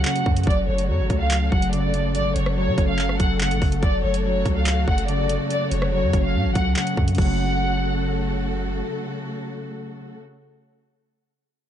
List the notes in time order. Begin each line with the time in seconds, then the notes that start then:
Already playing: F#2 C#3 F#3 A3 C#4 F#4 A4
0.05 C#3 F#5, clap
0.16 closed hi-hat
0.26 F#2 C#3, kick
0.37 closed hi-hat
0.43 F#1 F#2 A3 A4 D5, kick, closed hi-hat
0.51 closed hi-hat
0.68 F#1 F#2 C#5
0.78 closed hi-hat
0.89 F#2 F#3 C#5
0.99 F#1
1.10 C#2 A3, kick, closed hi-hat
1.20 F5
1.31 F#2, clap, closed hi-hat
1.52 F#1 F#2 F#5, kick
1.62 closed hi-hat
1.73 C#3 D5, closed hi-hat
1.94 C#3, closed hi-hat
2.15 G#1 F#2 D5, closed hi-hat
2.25 F#1
2.36 F#1 F#2 C#5, closed hi-hat
2.46 cross-stick
2.57 F#3 C#5
2.67 C#3
2.78 F#1 C#4, kick, closed hi-hat
2.88 F5
2.99 F#2, clap
3.09 cross-stick
3.19 F#1 F#2 F#5, kick, closed hi-hat
3.41 C#3 F#5, clap
3.51 G#1, closed hi-hat
3.62 F#1 C#3, kick, open hi-hat
3.72 closed hi-hat
3.82 F#1 F#2 C#3 F#4 D5, kick, closed hi-hat
4.03 F#1 F#2 C#5
4.14 closed hi-hat
4.25 F#3 C#5
4.45 C#2 A3, kick, closed hi-hat
4.56 F5
4.66 F#2, clap, closed hi-hat
4.88 F#1 F#2 F#5, kick
4.98 closed hi-hat
5.08 C#3 D5, closed hi-hat
5.29 C#3, closed hi-hat
5.50 D5, closed hi-hat
5.71 F1 C#5, closed hi-hat
5.82 cross-stick
5.92 F#3 C#5
6.03 F#2
6.13 F#1 C#4, kick, closed hi-hat
6.24 F5
6.34 F#2 A2
6.45 F#1
6.55 C#2 F#2 F#5, kick, closed hi-hat
6.76 C#3 F#5, clap
6.87 closed hi-hat
6.97 F#2 C#3, kick
7.08 closed hi-hat
7.12 C#3 F#3, closed hi-hat
7.18 F#1 C#3 A3 F#4 A4 F#5, kick, closed hi-hat, crash
7.24 C#4